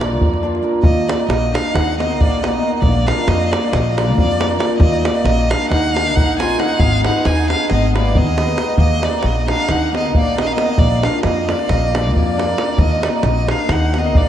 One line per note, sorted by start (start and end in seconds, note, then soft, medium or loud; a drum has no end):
0.00 0.22 A#1 medium
0.00 0.13 A#3 medium
0.00 0.45 A#3 medium
0.00 0.13 D4 medium
0.00 0.13 F4 medium
0.00 0.14 A#4 medium
0.00 0.44 D5 loud
0.00 davul high medium
0.21 0.59 F2 medium
0.21 davul low medium
0.34 davul high soft
0.43 0.55 A#3 medium
0.43 0.56 D4 medium
0.43 0.56 F4 medium
0.43 0.57 A#4 medium
0.55 davul high soft
0.62 0.75 A#3 medium
0.62 0.75 D4 medium
0.62 0.76 F4 medium
0.62 0.76 A#4 medium
0.83 1.11 D#2 medium
0.83 1.09 A#3 medium
0.83 1.10 D#5 medium
0.83 davul low loud
1.07 1.20 A#3 medium
1.07 1.28 A#3 medium
1.07 1.21 D#4 medium
1.07 1.21 F#4 medium
1.07 1.21 A#4 medium
1.07 1.29 D5 medium
1.07 davul high medium
1.20 davul high soft
1.29 1.56 A#1 medium
1.29 1.55 A#3 medium
1.29 1.56 D#5 medium
1.29 davul high medium
1.52 1.65 A#3 medium
1.52 1.75 D4 medium
1.52 1.65 D#4 medium
1.52 1.66 F#4 soft
1.52 1.66 A#4 medium
1.52 1.76 F5 medium
1.52 davul high medium
1.65 davul high soft
1.73 2.21 D#2 medium
1.73 1.98 D#4 medium
1.73 1.99 F#5 medium
1.73 davul high medium
1.73 davul low medium
1.97 2.11 A#3 medium
1.97 2.21 B3 medium
1.97 2.11 D#4 medium
1.97 2.11 F#4 medium
1.97 2.12 A#4 medium
1.97 2.22 D#5 medium
1.97 davul high medium
2.11 davul high soft
2.19 2.57 A#1 medium
2.19 2.45 A#3 medium
2.19 2.44 D5 medium
2.19 davul low loud
2.41 2.54 A#3 medium
2.41 2.49 B3 medium
2.41 2.54 D#4 medium
2.41 2.54 F#4 medium
2.41 2.55 A#4 medium
2.41 2.50 D#5 medium
2.41 davul high medium
2.48 2.57 A#3 medium
2.48 2.55 D5 medium
2.53 2.76 B3 medium
2.53 2.76 D#5 medium
2.53 davul high soft
2.61 2.73 A#3 medium
2.61 2.74 D#4 medium
2.61 2.74 F#4 medium
2.61 2.74 A#4 medium
2.76 2.83 B3 medium
2.76 2.82 D#5 medium
2.81 3.09 A#1 loud
2.81 3.08 A#3 medium
2.81 3.08 D5 medium
2.81 davul low medium
3.06 3.18 A#3 medium
3.06 3.19 D4 medium
3.06 3.29 D4 medium
3.06 3.19 F4 medium
3.06 3.19 A#4 medium
3.06 3.30 F5 medium
3.06 davul high medium
3.18 davul high soft
3.28 3.55 F2 medium
3.28 3.52 A#3 medium
3.28 3.53 D#5 loud
3.28 davul high medium
3.51 3.64 A#3 medium
3.51 3.73 A#3 medium
3.51 3.64 D4 medium
3.51 3.65 F4 soft
3.51 3.65 A#4 medium
3.51 3.75 D5 medium
3.51 davul high medium
3.63 davul high soft
3.72 4.18 A#1 medium
3.72 3.99 A#3 medium
3.72 3.99 D#5 medium
3.72 davul high medium
3.72 davul low medium
3.97 4.10 A#3 medium
3.97 4.18 A#3 medium
3.97 4.10 D4 medium
3.97 4.10 F4 medium
3.97 4.10 A#4 medium
3.97 4.17 D5 medium
3.97 davul high medium
4.09 davul high soft
4.17 4.55 F2 loud
4.17 4.58 A#3 medium
4.17 4.57 D5 medium
4.17 davul low medium
4.40 4.53 A#3 medium
4.40 4.53 D4 medium
4.40 4.53 F4 medium
4.40 4.53 A#4 medium
4.40 davul high medium
4.51 davul high soft
4.59 4.72 A#3 medium
4.59 4.79 A#3 medium
4.59 4.72 D4 medium
4.59 4.72 F4 medium
4.59 4.73 A#4 medium
4.59 4.78 D5 medium
4.59 davul high medium
4.79 5.07 D#2 loud
4.79 5.05 A#3 medium
4.79 5.06 D#5 loud
4.79 davul low loud
5.03 5.16 A#3 medium
5.03 5.27 A#3 medium
5.03 5.17 D#4 medium
5.03 5.17 F#4 medium
5.03 5.17 A#4 medium
5.03 5.28 D5 medium
5.03 davul high medium
5.15 davul high soft
5.24 5.52 A#1 medium
5.24 5.54 A#3 medium
5.24 5.52 D#5 medium
5.24 davul high medium
5.50 5.63 A#3 medium
5.50 5.72 D4 medium
5.50 5.63 D#4 medium
5.50 5.63 F#4 medium
5.50 5.63 A#4 medium
5.50 5.70 F5 medium
5.50 davul high medium
5.62 davul high soft
5.71 6.16 D#2 medium
5.71 5.98 D#4 medium
5.71 5.98 F#5 loud
5.71 davul high medium
5.71 davul low medium
5.94 6.08 A#3 medium
5.94 6.19 D4 medium
5.94 6.08 D#4 medium
5.94 6.09 F#4 medium
5.94 6.09 A#4 medium
5.94 6.17 F5 loud
5.94 davul high medium
6.08 davul high soft
6.15 6.54 A#1 loud
6.15 6.40 D#4 medium
6.15 6.39 F#5 loud
6.15 davul low medium
6.37 6.51 A#3 medium
6.37 6.51 D#4 medium
6.37 6.51 F#4 medium
6.37 6.52 A#4 medium
6.37 6.61 G#5 medium
6.37 davul high medium
6.42 6.62 F4 medium
6.50 davul high soft
6.57 6.70 A#3 medium
6.57 6.71 D#4 medium
6.57 6.82 D#4 medium
6.57 6.71 F#4 medium
6.57 6.71 A#4 medium
6.57 6.81 F#5 loud
6.57 davul high medium
6.79 7.07 G#1 loud
6.79 7.05 B3 medium
6.79 7.05 F5 loud
6.79 davul low medium
6.92 davul high soft
7.03 7.16 B3 medium
7.03 7.16 D#4 medium
7.03 7.17 G#4 medium
7.03 7.17 B4 medium
7.03 7.28 F#5 medium
7.03 davul high medium
7.07 7.27 D#4 medium
7.15 davul high soft
7.25 7.53 D#2 medium
7.25 7.50 D#4 medium
7.25 7.50 G#5 medium
7.25 davul high medium
7.38 davul high soft
7.48 7.62 B3 medium
7.48 7.69 D4 medium
7.48 7.62 D#4 medium
7.48 7.62 G#4 soft
7.48 7.62 B4 medium
7.48 7.69 F5 medium
7.48 davul high medium
7.60 davul high soft
7.70 8.17 G#1 medium
7.70 7.95 B3 medium
7.70 7.94 D#5 medium
7.70 davul high medium
7.94 8.18 A#3 medium
7.94 8.07 B3 medium
7.94 8.07 D#4 medium
7.94 8.08 G#4 medium
7.94 8.08 B4 medium
7.94 davul high medium
7.98 8.19 D5 medium
8.15 8.53 D#2 loud
8.15 8.62 B3 medium
8.15 8.79 D#5 loud
8.15 davul low medium
8.27 davul high soft
8.36 8.49 B3 medium
8.36 8.50 D#4 medium
8.36 8.50 G#4 medium
8.36 8.51 B4 medium
8.36 davul high medium
8.49 davul high soft
8.56 8.69 B3 medium
8.56 8.70 D#4 medium
8.56 8.70 G#4 soft
8.56 8.70 B4 medium
8.56 davul high medium
8.68 davul high soft
8.78 9.06 D#2 loud
8.78 9.04 A#3 medium
8.78 9.06 D#5 medium
8.78 davul low medium
9.00 9.15 A#3 medium
9.00 9.23 A#3 medium
9.00 9.15 D#4 medium
9.00 9.15 F#4 medium
9.00 9.15 A#4 medium
9.00 davul high medium
9.05 9.28 D5 medium
9.13 davul high soft
9.23 9.52 A#1 medium
9.23 9.47 A#3 medium
9.23 9.50 D#5 medium
9.23 davul high medium
9.46 9.60 A#3 medium
9.46 9.71 D4 medium
9.46 9.60 D#4 soft
9.46 9.61 F#4 medium
9.46 9.61 A#4 medium
9.46 davul high medium
9.51 9.72 F5 medium
9.60 davul high soft
9.69 10.15 D#2 medium
9.69 9.93 D#4 medium
9.69 9.96 F#5 medium
9.69 davul high medium
9.69 davul low medium
9.92 10.06 A#3 medium
9.92 10.13 B3 medium
9.92 10.06 D#4 medium
9.92 10.07 F#4 medium
9.92 10.07 A#4 medium
9.92 davul high medium
9.97 10.15 D#5 medium
10.05 davul high soft
10.15 10.53 A#1 medium
10.15 10.37 A#3 medium
10.15 davul low medium
10.19 10.39 D5 medium
10.35 10.49 A#3 medium
10.35 10.46 B3 medium
10.35 10.50 D#4 medium
10.35 10.50 F#4 medium
10.35 10.50 A#4 medium
10.35 davul high medium
10.42 10.53 D4 medium
10.42 10.48 D#5 medium
10.47 10.54 F5 medium
10.47 davul high soft
10.52 10.69 A#3 medium
10.52 10.80 B3 medium
10.52 10.80 D#5 loud
10.56 10.69 D#4 medium
10.56 10.70 F#4 medium
10.56 10.70 A#4 medium
10.56 davul high medium
10.78 11.06 A#1 loud
10.78 11.06 A#3 medium
10.78 11.06 D5 loud
10.78 davul low loud
11.02 11.15 A#3 medium
11.02 11.16 D4 medium
11.02 11.23 D4 medium
11.02 11.16 F4 medium
11.02 11.16 A#4 medium
11.02 11.23 F5 medium
11.02 davul high medium
11.14 davul high soft
11.23 11.51 F2 loud
11.23 11.51 A#3 medium
11.23 11.52 D#5 medium
11.23 davul high medium
11.48 11.61 A#3 medium
11.48 11.72 A#3 medium
11.48 11.61 D4 medium
11.48 11.62 F4 medium
11.48 11.62 A#4 medium
11.48 11.70 D5 medium
11.48 davul high medium
11.59 davul high soft
11.69 12.16 A#1 medium
11.69 11.97 A#3 medium
11.69 11.97 D#5 medium
11.69 davul high medium
11.69 davul low medium
11.94 12.07 A#3 medium
11.94 12.16 A#3 medium
11.94 12.08 D4 medium
11.94 12.08 F4 medium
11.94 12.08 A#4 medium
11.94 12.15 D5 medium
11.94 davul high medium
12.06 davul high soft
12.16 12.53 F2 loud
12.16 12.79 A#3 medium
12.16 12.80 D5 medium
12.16 davul low medium
12.37 12.50 A#3 medium
12.37 12.50 D4 medium
12.37 12.50 F4 medium
12.37 12.50 A#4 medium
12.37 davul high medium
12.49 davul high soft
12.58 12.70 A#3 medium
12.58 12.70 D4 medium
12.58 12.71 F4 medium
12.58 12.71 A#4 medium
12.58 davul high medium
12.78 13.05 D#2 loud
12.78 13.05 A#3 medium
12.78 13.06 D#5 loud
12.78 davul low loud
13.02 13.15 A#3 medium
13.02 13.10 A#3 medium
13.02 13.15 D#4 medium
13.02 13.16 F#4 medium
13.02 13.16 A#4 medium
13.02 13.10 D5 medium
13.02 davul high medium
13.08 13.16 B3 soft
13.08 13.17 D#5 medium
13.13 13.25 A#3 medium
13.13 13.27 D5 medium
13.13 davul high soft
13.23 13.51 A#1 loud
13.23 13.52 A#3 medium
13.23 13.52 D#5 medium
13.23 davul high medium
13.47 13.60 A#3 medium
13.47 13.72 D4 medium
13.47 13.61 D#4 medium
13.47 13.61 F#4 medium
13.47 13.62 A#4 medium
13.47 13.73 F5 medium
13.47 davul high medium
13.59 davul high soft
13.69 14.15 D#2 medium
13.69 13.98 D#4 medium
13.69 14.00 F#5 medium
13.69 davul high medium
13.69 davul low medium
13.94 14.07 A#3 medium
13.94 14.18 B3 medium
13.94 14.07 D#4 medium
13.94 14.07 F#4 medium
13.94 14.08 A#4 medium
13.94 davul high medium
13.98 14.18 D#5 medium
14.04 davul high soft
14.15 14.29 A#1 medium
14.15 14.29 A#3 medium
14.15 14.29 D5 medium
14.15 davul low medium